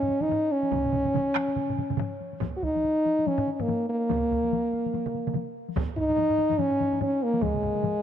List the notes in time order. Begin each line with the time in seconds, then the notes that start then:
Already playing: C#4
0.03 taiko low-mid
0.08 taiko low-mid, taiko high
0.20 D#4, taiko low-mid, taiko high
0.29 taiko low-mid, taiko high
0.52 C#4
0.63 taiko high
0.71 taiko, taiko low-mid, taiko mid, taiko high
0.84 taiko low-mid, taiko mid
0.92 taiko, taiko low-mid, taiko mid, taiko high
1.05 taiko low-mid, taiko mid, taiko high
1.14 taiko low-mid, taiko mid, taiko high
1.35 taiko rim, taiko high
1.48 taiko high
1.56 taiko low-mid, taiko mid, taiko high
1.69 taiko low-mid, taiko mid
1.78 taiko low-mid, taiko mid, taiko high
1.90 taiko low-mid, taiko mid, taiko high
1.97 taiko low-mid, taiko mid, taiko high
2.21 taiko high
2.33 taiko high
2.41 taiko, taiko low-mid, taiko high
2.56 F#4
2.63 D#4, taiko, taiko high
2.76 taiko high
2.84 taiko high
3.06 taiko high
3.19 taiko high
3.27 C#4, taiko high
3.38 taiko low-mid
3.47 taiko high
3.53 C#4
3.59 A#3, taiko low-mid, taiko high
3.68 taiko low-mid, taiko high
3.89 A#3
4.09 taiko, taiko mid, taiko high
4.31 taiko, taiko high
4.44 taiko high
4.52 taiko high
4.74 taiko high
4.86 taiko high
4.94 taiko high
5.06 taiko mid
5.14 taiko high
5.27 taiko mid, taiko high
5.34 taiko mid, taiko high
5.69 taiko high
5.76 taiko, taiko low-mid, taiko high
5.97 D#4, taiko, taiko low-mid, taiko high
6.09 taiko low-mid, taiko high
6.17 taiko low-mid, taiko high
6.29 taiko low-mid
6.38 taiko low-mid, taiko high
6.51 taiko low-mid, taiko high
6.58 C#4, taiko low-mid, taiko high
6.71 taiko low-mid
6.80 taiko low-mid, taiko high
6.92 taiko low-mid, taiko high
7.01 C#4, taiko low-mid, taiko high
7.23 A#3
7.34 taiko high
7.41 G#3, taiko, taiko low-mid, taiko mid, taiko high
7.54 taiko low-mid, taiko mid
7.62 taiko, taiko low-mid, taiko mid
7.75 taiko low-mid, taiko mid, taiko high
7.83 taiko low-mid, taiko mid, taiko high